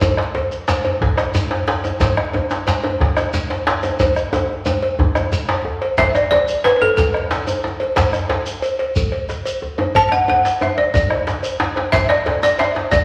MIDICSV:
0, 0, Header, 1, 6, 480
1, 0, Start_track
1, 0, Key_signature, 2, "major"
1, 0, Tempo, 330943
1, 17, Time_signature, 12, 3, 24, 8
1, 18919, End_track
2, 0, Start_track
2, 0, Title_t, "Balafon"
2, 0, Program_c, 0, 12
2, 8675, Note_on_c, 0, 76, 97
2, 8924, Note_on_c, 0, 74, 79
2, 8925, Note_off_c, 0, 76, 0
2, 9132, Note_off_c, 0, 74, 0
2, 9149, Note_on_c, 0, 74, 84
2, 9634, Note_on_c, 0, 71, 81
2, 9650, Note_off_c, 0, 74, 0
2, 9792, Note_off_c, 0, 71, 0
2, 9809, Note_on_c, 0, 71, 61
2, 9875, Note_off_c, 0, 71, 0
2, 9884, Note_on_c, 0, 69, 82
2, 10092, Note_off_c, 0, 69, 0
2, 10109, Note_on_c, 0, 69, 69
2, 11017, Note_off_c, 0, 69, 0
2, 14447, Note_on_c, 0, 81, 112
2, 14612, Note_off_c, 0, 81, 0
2, 14629, Note_on_c, 0, 81, 68
2, 14678, Note_on_c, 0, 78, 90
2, 14683, Note_off_c, 0, 81, 0
2, 14900, Note_off_c, 0, 78, 0
2, 14930, Note_on_c, 0, 78, 84
2, 15369, Note_off_c, 0, 78, 0
2, 15404, Note_on_c, 0, 76, 79
2, 15633, Note_on_c, 0, 74, 76
2, 15646, Note_off_c, 0, 76, 0
2, 15741, Note_off_c, 0, 74, 0
2, 15867, Note_on_c, 0, 74, 73
2, 16769, Note_off_c, 0, 74, 0
2, 17292, Note_on_c, 0, 76, 110
2, 17534, Note_on_c, 0, 74, 86
2, 17547, Note_off_c, 0, 76, 0
2, 17985, Note_off_c, 0, 74, 0
2, 18032, Note_on_c, 0, 74, 92
2, 18263, Note_on_c, 0, 76, 97
2, 18275, Note_off_c, 0, 74, 0
2, 18732, Note_on_c, 0, 74, 88
2, 18756, Note_off_c, 0, 76, 0
2, 18919, Note_off_c, 0, 74, 0
2, 18919, End_track
3, 0, Start_track
3, 0, Title_t, "Bombo"
3, 17, Note_on_c, 9, 37, 27
3, 17, Note_on_c, 9, 43, 83
3, 162, Note_off_c, 9, 37, 0
3, 162, Note_off_c, 9, 43, 0
3, 252, Note_on_c, 9, 37, 56
3, 397, Note_off_c, 9, 37, 0
3, 1223, Note_on_c, 9, 37, 27
3, 1368, Note_off_c, 9, 37, 0
3, 1467, Note_on_c, 9, 43, 100
3, 1612, Note_off_c, 9, 43, 0
3, 1704, Note_on_c, 9, 37, 71
3, 1849, Note_off_c, 9, 37, 0
3, 1948, Note_on_c, 9, 37, 30
3, 2093, Note_off_c, 9, 37, 0
3, 2677, Note_on_c, 9, 37, 30
3, 2822, Note_off_c, 9, 37, 0
3, 2901, Note_on_c, 9, 37, 32
3, 2901, Note_on_c, 9, 43, 102
3, 3046, Note_off_c, 9, 37, 0
3, 3046, Note_off_c, 9, 43, 0
3, 3152, Note_on_c, 9, 37, 78
3, 3297, Note_off_c, 9, 37, 0
3, 4120, Note_on_c, 9, 37, 30
3, 4265, Note_off_c, 9, 37, 0
3, 4356, Note_on_c, 9, 43, 108
3, 4501, Note_off_c, 9, 43, 0
3, 4590, Note_on_c, 9, 37, 81
3, 4735, Note_off_c, 9, 37, 0
3, 4840, Note_on_c, 9, 37, 32
3, 4985, Note_off_c, 9, 37, 0
3, 5321, Note_on_c, 9, 37, 27
3, 5466, Note_off_c, 9, 37, 0
3, 5567, Note_on_c, 9, 37, 30
3, 5712, Note_off_c, 9, 37, 0
3, 5795, Note_on_c, 9, 43, 91
3, 5940, Note_off_c, 9, 43, 0
3, 6039, Note_on_c, 9, 37, 70
3, 6184, Note_off_c, 9, 37, 0
3, 6516, Note_on_c, 9, 37, 32
3, 6661, Note_off_c, 9, 37, 0
3, 7234, Note_on_c, 9, 43, 119
3, 7379, Note_off_c, 9, 43, 0
3, 7471, Note_on_c, 9, 37, 77
3, 7616, Note_off_c, 9, 37, 0
3, 7958, Note_on_c, 9, 37, 30
3, 8103, Note_off_c, 9, 37, 0
3, 8669, Note_on_c, 9, 37, 32
3, 8669, Note_on_c, 9, 43, 92
3, 8814, Note_off_c, 9, 37, 0
3, 8814, Note_off_c, 9, 43, 0
3, 8917, Note_on_c, 9, 37, 64
3, 9062, Note_off_c, 9, 37, 0
3, 10121, Note_on_c, 9, 43, 93
3, 10266, Note_off_c, 9, 43, 0
3, 10359, Note_on_c, 9, 37, 70
3, 10505, Note_off_c, 9, 37, 0
3, 10603, Note_on_c, 9, 37, 28
3, 10748, Note_off_c, 9, 37, 0
3, 11562, Note_on_c, 9, 37, 27
3, 11562, Note_on_c, 9, 43, 80
3, 11707, Note_off_c, 9, 37, 0
3, 11707, Note_off_c, 9, 43, 0
3, 11791, Note_on_c, 9, 37, 62
3, 11936, Note_off_c, 9, 37, 0
3, 12990, Note_on_c, 9, 43, 102
3, 13135, Note_off_c, 9, 43, 0
3, 13471, Note_on_c, 9, 37, 27
3, 13616, Note_off_c, 9, 37, 0
3, 14429, Note_on_c, 9, 37, 30
3, 14429, Note_on_c, 9, 43, 88
3, 14574, Note_off_c, 9, 37, 0
3, 14574, Note_off_c, 9, 43, 0
3, 14671, Note_on_c, 9, 37, 67
3, 14816, Note_off_c, 9, 37, 0
3, 15868, Note_on_c, 9, 43, 106
3, 16013, Note_off_c, 9, 43, 0
3, 16106, Note_on_c, 9, 37, 78
3, 16251, Note_off_c, 9, 37, 0
3, 16353, Note_on_c, 9, 37, 33
3, 16498, Note_off_c, 9, 37, 0
3, 17303, Note_on_c, 9, 43, 102
3, 17448, Note_off_c, 9, 43, 0
3, 17544, Note_on_c, 9, 37, 73
3, 17689, Note_off_c, 9, 37, 0
3, 17784, Note_on_c, 9, 37, 31
3, 17929, Note_off_c, 9, 37, 0
3, 18501, Note_on_c, 9, 37, 29
3, 18646, Note_off_c, 9, 37, 0
3, 18736, Note_on_c, 9, 37, 34
3, 18736, Note_on_c, 9, 43, 114
3, 18881, Note_off_c, 9, 37, 0
3, 18881, Note_off_c, 9, 43, 0
3, 18919, End_track
4, 0, Start_track
4, 0, Title_t, "Djembe"
4, 22, Note_on_c, 9, 63, 107
4, 36, Note_on_c, 9, 64, 61
4, 167, Note_off_c, 9, 63, 0
4, 181, Note_off_c, 9, 64, 0
4, 266, Note_on_c, 9, 62, 82
4, 411, Note_off_c, 9, 62, 0
4, 505, Note_on_c, 9, 62, 69
4, 505, Note_on_c, 9, 63, 66
4, 650, Note_off_c, 9, 62, 0
4, 650, Note_off_c, 9, 63, 0
4, 751, Note_on_c, 9, 62, 22
4, 896, Note_off_c, 9, 62, 0
4, 985, Note_on_c, 9, 62, 100
4, 1130, Note_off_c, 9, 62, 0
4, 1228, Note_on_c, 9, 63, 74
4, 1234, Note_on_c, 9, 62, 55
4, 1373, Note_off_c, 9, 63, 0
4, 1379, Note_off_c, 9, 62, 0
4, 1474, Note_on_c, 9, 62, 76
4, 1475, Note_on_c, 9, 63, 67
4, 1475, Note_on_c, 9, 64, 77
4, 1620, Note_off_c, 9, 62, 0
4, 1620, Note_off_c, 9, 63, 0
4, 1620, Note_off_c, 9, 64, 0
4, 1710, Note_on_c, 9, 62, 82
4, 1855, Note_off_c, 9, 62, 0
4, 1948, Note_on_c, 9, 62, 70
4, 1949, Note_on_c, 9, 63, 83
4, 2093, Note_off_c, 9, 62, 0
4, 2094, Note_off_c, 9, 63, 0
4, 2186, Note_on_c, 9, 62, 72
4, 2331, Note_off_c, 9, 62, 0
4, 2431, Note_on_c, 9, 62, 102
4, 2433, Note_on_c, 9, 63, 72
4, 2576, Note_off_c, 9, 62, 0
4, 2578, Note_off_c, 9, 63, 0
4, 2669, Note_on_c, 9, 62, 50
4, 2678, Note_on_c, 9, 63, 74
4, 2814, Note_off_c, 9, 62, 0
4, 2823, Note_off_c, 9, 63, 0
4, 2904, Note_on_c, 9, 64, 57
4, 2915, Note_on_c, 9, 62, 88
4, 3049, Note_off_c, 9, 64, 0
4, 3060, Note_off_c, 9, 62, 0
4, 3156, Note_on_c, 9, 62, 74
4, 3301, Note_off_c, 9, 62, 0
4, 3397, Note_on_c, 9, 62, 61
4, 3397, Note_on_c, 9, 63, 65
4, 3401, Note_off_c, 9, 63, 0
4, 3401, Note_on_c, 9, 63, 87
4, 3542, Note_off_c, 9, 62, 0
4, 3546, Note_off_c, 9, 63, 0
4, 3635, Note_on_c, 9, 62, 19
4, 3638, Note_off_c, 9, 62, 0
4, 3638, Note_on_c, 9, 62, 82
4, 3783, Note_off_c, 9, 62, 0
4, 3881, Note_on_c, 9, 62, 96
4, 4026, Note_off_c, 9, 62, 0
4, 4109, Note_on_c, 9, 62, 54
4, 4122, Note_on_c, 9, 63, 79
4, 4254, Note_off_c, 9, 62, 0
4, 4267, Note_off_c, 9, 63, 0
4, 4355, Note_on_c, 9, 63, 71
4, 4355, Note_on_c, 9, 64, 67
4, 4367, Note_on_c, 9, 62, 78
4, 4500, Note_off_c, 9, 63, 0
4, 4500, Note_off_c, 9, 64, 0
4, 4512, Note_off_c, 9, 62, 0
4, 4602, Note_on_c, 9, 62, 79
4, 4747, Note_off_c, 9, 62, 0
4, 4838, Note_on_c, 9, 62, 72
4, 4843, Note_on_c, 9, 63, 74
4, 4983, Note_off_c, 9, 62, 0
4, 4988, Note_off_c, 9, 63, 0
4, 5083, Note_on_c, 9, 62, 73
4, 5228, Note_off_c, 9, 62, 0
4, 5319, Note_on_c, 9, 63, 70
4, 5320, Note_on_c, 9, 62, 109
4, 5464, Note_off_c, 9, 63, 0
4, 5465, Note_off_c, 9, 62, 0
4, 5561, Note_on_c, 9, 62, 53
4, 5568, Note_on_c, 9, 63, 74
4, 5706, Note_off_c, 9, 62, 0
4, 5713, Note_off_c, 9, 63, 0
4, 5799, Note_on_c, 9, 63, 104
4, 5801, Note_on_c, 9, 62, 19
4, 5801, Note_on_c, 9, 64, 70
4, 5944, Note_off_c, 9, 63, 0
4, 5946, Note_off_c, 9, 62, 0
4, 5946, Note_off_c, 9, 64, 0
4, 6276, Note_on_c, 9, 63, 112
4, 6277, Note_off_c, 9, 63, 0
4, 6277, Note_on_c, 9, 62, 73
4, 6277, Note_on_c, 9, 63, 70
4, 6423, Note_off_c, 9, 62, 0
4, 6423, Note_off_c, 9, 63, 0
4, 6760, Note_on_c, 9, 63, 106
4, 6905, Note_off_c, 9, 63, 0
4, 6995, Note_on_c, 9, 62, 54
4, 7140, Note_off_c, 9, 62, 0
4, 7233, Note_on_c, 9, 62, 23
4, 7233, Note_on_c, 9, 63, 64
4, 7233, Note_on_c, 9, 64, 69
4, 7243, Note_off_c, 9, 63, 0
4, 7243, Note_on_c, 9, 63, 101
4, 7378, Note_off_c, 9, 62, 0
4, 7378, Note_off_c, 9, 64, 0
4, 7388, Note_off_c, 9, 63, 0
4, 7477, Note_on_c, 9, 63, 100
4, 7622, Note_off_c, 9, 63, 0
4, 7720, Note_on_c, 9, 62, 65
4, 7865, Note_off_c, 9, 62, 0
4, 7956, Note_on_c, 9, 62, 22
4, 7957, Note_off_c, 9, 62, 0
4, 7957, Note_on_c, 9, 62, 91
4, 8102, Note_off_c, 9, 62, 0
4, 8193, Note_on_c, 9, 63, 70
4, 8338, Note_off_c, 9, 63, 0
4, 8441, Note_on_c, 9, 62, 46
4, 8586, Note_off_c, 9, 62, 0
4, 8677, Note_on_c, 9, 62, 96
4, 8679, Note_on_c, 9, 64, 64
4, 8822, Note_off_c, 9, 62, 0
4, 8824, Note_off_c, 9, 64, 0
4, 8917, Note_on_c, 9, 63, 75
4, 9062, Note_off_c, 9, 63, 0
4, 9161, Note_on_c, 9, 62, 65
4, 9161, Note_on_c, 9, 63, 67
4, 9164, Note_off_c, 9, 62, 0
4, 9164, Note_on_c, 9, 62, 81
4, 9306, Note_off_c, 9, 63, 0
4, 9309, Note_off_c, 9, 62, 0
4, 9641, Note_on_c, 9, 62, 91
4, 9786, Note_off_c, 9, 62, 0
4, 9880, Note_on_c, 9, 62, 55
4, 9883, Note_on_c, 9, 63, 84
4, 10025, Note_off_c, 9, 62, 0
4, 10028, Note_off_c, 9, 63, 0
4, 10120, Note_on_c, 9, 63, 73
4, 10120, Note_on_c, 9, 64, 66
4, 10122, Note_on_c, 9, 62, 78
4, 10265, Note_off_c, 9, 63, 0
4, 10265, Note_off_c, 9, 64, 0
4, 10267, Note_off_c, 9, 62, 0
4, 10598, Note_on_c, 9, 62, 102
4, 10600, Note_off_c, 9, 62, 0
4, 10600, Note_on_c, 9, 62, 69
4, 10745, Note_off_c, 9, 62, 0
4, 10842, Note_on_c, 9, 63, 68
4, 10987, Note_off_c, 9, 63, 0
4, 11081, Note_on_c, 9, 62, 76
4, 11084, Note_off_c, 9, 62, 0
4, 11084, Note_on_c, 9, 62, 21
4, 11084, Note_on_c, 9, 63, 62
4, 11229, Note_off_c, 9, 62, 0
4, 11229, Note_off_c, 9, 63, 0
4, 11331, Note_on_c, 9, 62, 51
4, 11476, Note_off_c, 9, 62, 0
4, 11555, Note_on_c, 9, 62, 110
4, 11561, Note_on_c, 9, 64, 62
4, 11700, Note_off_c, 9, 62, 0
4, 11706, Note_off_c, 9, 64, 0
4, 11792, Note_on_c, 9, 63, 71
4, 11799, Note_on_c, 9, 62, 19
4, 11937, Note_off_c, 9, 63, 0
4, 11944, Note_off_c, 9, 62, 0
4, 12031, Note_on_c, 9, 62, 89
4, 12034, Note_off_c, 9, 62, 0
4, 12034, Note_on_c, 9, 62, 59
4, 12034, Note_on_c, 9, 63, 58
4, 12179, Note_off_c, 9, 62, 0
4, 12179, Note_off_c, 9, 63, 0
4, 12764, Note_on_c, 9, 62, 52
4, 12909, Note_off_c, 9, 62, 0
4, 13005, Note_on_c, 9, 63, 64
4, 13005, Note_on_c, 9, 64, 69
4, 13150, Note_off_c, 9, 63, 0
4, 13150, Note_off_c, 9, 64, 0
4, 13481, Note_on_c, 9, 62, 59
4, 13626, Note_off_c, 9, 62, 0
4, 13956, Note_on_c, 9, 62, 20
4, 13956, Note_on_c, 9, 63, 66
4, 14102, Note_off_c, 9, 62, 0
4, 14102, Note_off_c, 9, 63, 0
4, 14194, Note_on_c, 9, 63, 99
4, 14199, Note_on_c, 9, 62, 52
4, 14339, Note_off_c, 9, 63, 0
4, 14344, Note_off_c, 9, 62, 0
4, 14439, Note_on_c, 9, 64, 59
4, 14585, Note_off_c, 9, 64, 0
4, 14676, Note_on_c, 9, 63, 74
4, 14682, Note_on_c, 9, 62, 21
4, 14821, Note_off_c, 9, 63, 0
4, 14827, Note_off_c, 9, 62, 0
4, 14912, Note_on_c, 9, 63, 83
4, 14913, Note_off_c, 9, 63, 0
4, 14913, Note_on_c, 9, 62, 61
4, 14913, Note_on_c, 9, 63, 67
4, 15058, Note_off_c, 9, 62, 0
4, 15058, Note_off_c, 9, 63, 0
4, 15154, Note_on_c, 9, 62, 78
4, 15299, Note_off_c, 9, 62, 0
4, 15394, Note_on_c, 9, 63, 103
4, 15539, Note_off_c, 9, 63, 0
4, 15630, Note_on_c, 9, 62, 57
4, 15775, Note_off_c, 9, 62, 0
4, 15870, Note_on_c, 9, 63, 78
4, 15874, Note_off_c, 9, 63, 0
4, 15874, Note_on_c, 9, 63, 62
4, 15874, Note_on_c, 9, 64, 63
4, 16019, Note_off_c, 9, 63, 0
4, 16019, Note_off_c, 9, 64, 0
4, 16108, Note_on_c, 9, 63, 76
4, 16253, Note_off_c, 9, 63, 0
4, 16346, Note_on_c, 9, 62, 67
4, 16353, Note_off_c, 9, 62, 0
4, 16353, Note_on_c, 9, 62, 77
4, 16498, Note_off_c, 9, 62, 0
4, 16823, Note_on_c, 9, 62, 104
4, 16830, Note_off_c, 9, 62, 0
4, 16830, Note_on_c, 9, 62, 20
4, 16830, Note_on_c, 9, 63, 62
4, 16975, Note_off_c, 9, 62, 0
4, 16975, Note_off_c, 9, 63, 0
4, 17070, Note_on_c, 9, 62, 49
4, 17072, Note_off_c, 9, 62, 0
4, 17072, Note_on_c, 9, 62, 74
4, 17217, Note_off_c, 9, 62, 0
4, 17307, Note_on_c, 9, 62, 86
4, 17312, Note_off_c, 9, 62, 0
4, 17312, Note_on_c, 9, 62, 20
4, 17312, Note_on_c, 9, 64, 58
4, 17457, Note_off_c, 9, 62, 0
4, 17457, Note_off_c, 9, 64, 0
4, 17550, Note_on_c, 9, 62, 93
4, 17695, Note_off_c, 9, 62, 0
4, 17783, Note_on_c, 9, 62, 68
4, 17783, Note_on_c, 9, 63, 70
4, 17792, Note_off_c, 9, 62, 0
4, 17792, Note_on_c, 9, 62, 82
4, 17928, Note_off_c, 9, 63, 0
4, 17937, Note_off_c, 9, 62, 0
4, 18026, Note_on_c, 9, 62, 78
4, 18028, Note_off_c, 9, 62, 0
4, 18028, Note_on_c, 9, 62, 20
4, 18173, Note_off_c, 9, 62, 0
4, 18264, Note_on_c, 9, 62, 24
4, 18266, Note_off_c, 9, 62, 0
4, 18266, Note_on_c, 9, 62, 94
4, 18411, Note_off_c, 9, 62, 0
4, 18507, Note_on_c, 9, 62, 59
4, 18510, Note_off_c, 9, 62, 0
4, 18510, Note_on_c, 9, 62, 80
4, 18655, Note_off_c, 9, 62, 0
4, 18744, Note_on_c, 9, 62, 72
4, 18744, Note_on_c, 9, 63, 77
4, 18744, Note_on_c, 9, 64, 74
4, 18889, Note_off_c, 9, 62, 0
4, 18889, Note_off_c, 9, 63, 0
4, 18889, Note_off_c, 9, 64, 0
4, 18919, End_track
5, 0, Start_track
5, 0, Title_t, "Shekere"
5, 20, Note_on_c, 9, 82, 59
5, 165, Note_off_c, 9, 82, 0
5, 751, Note_on_c, 9, 82, 19
5, 896, Note_off_c, 9, 82, 0
5, 994, Note_on_c, 9, 82, 67
5, 1139, Note_off_c, 9, 82, 0
5, 1714, Note_on_c, 9, 82, 18
5, 1859, Note_off_c, 9, 82, 0
5, 1950, Note_on_c, 9, 82, 64
5, 2095, Note_off_c, 9, 82, 0
5, 2678, Note_on_c, 9, 82, 19
5, 2823, Note_off_c, 9, 82, 0
5, 2910, Note_on_c, 9, 82, 52
5, 3055, Note_off_c, 9, 82, 0
5, 3629, Note_on_c, 9, 82, 17
5, 3774, Note_off_c, 9, 82, 0
5, 3881, Note_on_c, 9, 82, 58
5, 4026, Note_off_c, 9, 82, 0
5, 4596, Note_on_c, 9, 82, 17
5, 4741, Note_off_c, 9, 82, 0
5, 4836, Note_on_c, 9, 82, 58
5, 4981, Note_off_c, 9, 82, 0
5, 5556, Note_on_c, 9, 82, 19
5, 5701, Note_off_c, 9, 82, 0
5, 5798, Note_on_c, 9, 82, 51
5, 5943, Note_off_c, 9, 82, 0
5, 6041, Note_on_c, 9, 82, 19
5, 6186, Note_off_c, 9, 82, 0
5, 6283, Note_on_c, 9, 82, 19
5, 6428, Note_off_c, 9, 82, 0
5, 6753, Note_on_c, 9, 82, 60
5, 6898, Note_off_c, 9, 82, 0
5, 7477, Note_on_c, 9, 82, 17
5, 7622, Note_off_c, 9, 82, 0
5, 7726, Note_on_c, 9, 82, 63
5, 7871, Note_off_c, 9, 82, 0
5, 8674, Note_on_c, 9, 82, 57
5, 8819, Note_off_c, 9, 82, 0
5, 8922, Note_on_c, 9, 82, 19
5, 9067, Note_off_c, 9, 82, 0
5, 9401, Note_on_c, 9, 82, 42
5, 9546, Note_off_c, 9, 82, 0
5, 9642, Note_on_c, 9, 82, 22
5, 9787, Note_off_c, 9, 82, 0
5, 10113, Note_on_c, 9, 82, 61
5, 10258, Note_off_c, 9, 82, 0
5, 10602, Note_on_c, 9, 82, 19
5, 10747, Note_off_c, 9, 82, 0
5, 10843, Note_on_c, 9, 82, 51
5, 10988, Note_off_c, 9, 82, 0
5, 11555, Note_on_c, 9, 82, 61
5, 11700, Note_off_c, 9, 82, 0
5, 11795, Note_on_c, 9, 82, 20
5, 11940, Note_off_c, 9, 82, 0
5, 12275, Note_on_c, 9, 82, 45
5, 12420, Note_off_c, 9, 82, 0
5, 12516, Note_on_c, 9, 82, 19
5, 12661, Note_off_c, 9, 82, 0
5, 12993, Note_on_c, 9, 82, 58
5, 13138, Note_off_c, 9, 82, 0
5, 13479, Note_on_c, 9, 82, 18
5, 13624, Note_off_c, 9, 82, 0
5, 13727, Note_on_c, 9, 82, 49
5, 13872, Note_off_c, 9, 82, 0
5, 14442, Note_on_c, 9, 82, 51
5, 14587, Note_off_c, 9, 82, 0
5, 14681, Note_on_c, 9, 82, 15
5, 14826, Note_off_c, 9, 82, 0
5, 15161, Note_on_c, 9, 82, 35
5, 15307, Note_off_c, 9, 82, 0
5, 15402, Note_on_c, 9, 82, 17
5, 15547, Note_off_c, 9, 82, 0
5, 15882, Note_on_c, 9, 82, 57
5, 16027, Note_off_c, 9, 82, 0
5, 16360, Note_on_c, 9, 82, 17
5, 16505, Note_off_c, 9, 82, 0
5, 16593, Note_on_c, 9, 82, 43
5, 16738, Note_off_c, 9, 82, 0
5, 17305, Note_on_c, 9, 82, 58
5, 17450, Note_off_c, 9, 82, 0
5, 18032, Note_on_c, 9, 82, 40
5, 18177, Note_off_c, 9, 82, 0
5, 18273, Note_on_c, 9, 82, 18
5, 18418, Note_off_c, 9, 82, 0
5, 18740, Note_on_c, 9, 82, 60
5, 18885, Note_off_c, 9, 82, 0
5, 18919, End_track
6, 0, Start_track
6, 0, Title_t, "Drums"
6, 24, Note_on_c, 9, 56, 57
6, 169, Note_off_c, 9, 56, 0
6, 503, Note_on_c, 9, 56, 48
6, 648, Note_off_c, 9, 56, 0
6, 987, Note_on_c, 9, 56, 49
6, 1132, Note_off_c, 9, 56, 0
6, 1225, Note_on_c, 9, 56, 51
6, 1370, Note_off_c, 9, 56, 0
6, 1700, Note_on_c, 9, 56, 46
6, 1845, Note_off_c, 9, 56, 0
6, 2185, Note_on_c, 9, 56, 39
6, 2330, Note_off_c, 9, 56, 0
6, 2666, Note_on_c, 9, 56, 39
6, 2811, Note_off_c, 9, 56, 0
6, 2912, Note_on_c, 9, 56, 52
6, 3057, Note_off_c, 9, 56, 0
6, 3385, Note_on_c, 9, 56, 44
6, 3530, Note_off_c, 9, 56, 0
6, 3869, Note_on_c, 9, 56, 42
6, 4014, Note_off_c, 9, 56, 0
6, 4111, Note_on_c, 9, 56, 48
6, 4256, Note_off_c, 9, 56, 0
6, 4597, Note_on_c, 9, 56, 46
6, 4742, Note_off_c, 9, 56, 0
6, 5078, Note_on_c, 9, 56, 45
6, 5223, Note_off_c, 9, 56, 0
6, 5556, Note_on_c, 9, 56, 51
6, 5701, Note_off_c, 9, 56, 0
6, 5800, Note_on_c, 9, 56, 70
6, 5945, Note_off_c, 9, 56, 0
6, 6279, Note_on_c, 9, 56, 55
6, 6424, Note_off_c, 9, 56, 0
6, 6753, Note_on_c, 9, 56, 50
6, 6898, Note_off_c, 9, 56, 0
6, 6997, Note_on_c, 9, 56, 49
6, 7142, Note_off_c, 9, 56, 0
6, 7481, Note_on_c, 9, 56, 47
6, 7626, Note_off_c, 9, 56, 0
6, 7958, Note_on_c, 9, 56, 45
6, 8103, Note_off_c, 9, 56, 0
6, 8437, Note_on_c, 9, 56, 54
6, 8582, Note_off_c, 9, 56, 0
6, 8677, Note_on_c, 9, 56, 63
6, 8822, Note_off_c, 9, 56, 0
6, 9161, Note_on_c, 9, 56, 53
6, 9306, Note_off_c, 9, 56, 0
6, 9641, Note_on_c, 9, 56, 53
6, 9786, Note_off_c, 9, 56, 0
6, 9873, Note_on_c, 9, 56, 51
6, 10018, Note_off_c, 9, 56, 0
6, 10351, Note_on_c, 9, 56, 44
6, 10496, Note_off_c, 9, 56, 0
6, 10836, Note_on_c, 9, 56, 47
6, 10981, Note_off_c, 9, 56, 0
6, 11313, Note_on_c, 9, 56, 57
6, 11458, Note_off_c, 9, 56, 0
6, 11547, Note_on_c, 9, 56, 65
6, 11692, Note_off_c, 9, 56, 0
6, 12028, Note_on_c, 9, 56, 48
6, 12173, Note_off_c, 9, 56, 0
6, 12506, Note_on_c, 9, 56, 55
6, 12651, Note_off_c, 9, 56, 0
6, 12750, Note_on_c, 9, 56, 50
6, 12895, Note_off_c, 9, 56, 0
6, 13228, Note_on_c, 9, 56, 41
6, 13373, Note_off_c, 9, 56, 0
6, 13714, Note_on_c, 9, 56, 47
6, 13859, Note_off_c, 9, 56, 0
6, 14186, Note_on_c, 9, 56, 50
6, 14331, Note_off_c, 9, 56, 0
6, 14432, Note_on_c, 9, 56, 61
6, 14577, Note_off_c, 9, 56, 0
6, 14911, Note_on_c, 9, 56, 48
6, 15056, Note_off_c, 9, 56, 0
6, 15387, Note_on_c, 9, 56, 47
6, 15532, Note_off_c, 9, 56, 0
6, 15627, Note_on_c, 9, 56, 45
6, 15772, Note_off_c, 9, 56, 0
6, 16098, Note_on_c, 9, 56, 42
6, 16243, Note_off_c, 9, 56, 0
6, 16576, Note_on_c, 9, 56, 43
6, 16722, Note_off_c, 9, 56, 0
6, 17059, Note_on_c, 9, 56, 43
6, 17204, Note_off_c, 9, 56, 0
6, 17299, Note_on_c, 9, 56, 50
6, 17444, Note_off_c, 9, 56, 0
6, 17774, Note_on_c, 9, 56, 42
6, 17919, Note_off_c, 9, 56, 0
6, 18251, Note_on_c, 9, 56, 43
6, 18396, Note_off_c, 9, 56, 0
6, 18493, Note_on_c, 9, 56, 45
6, 18638, Note_off_c, 9, 56, 0
6, 18919, End_track
0, 0, End_of_file